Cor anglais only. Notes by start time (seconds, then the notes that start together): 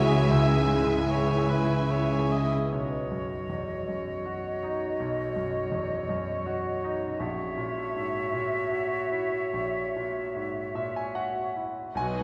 Already playing: C#5
0.32 E5
1.10 C#5
1.50 B4
1.91 C#5
2.31 D#5
2.72 C#5
7.20 C#5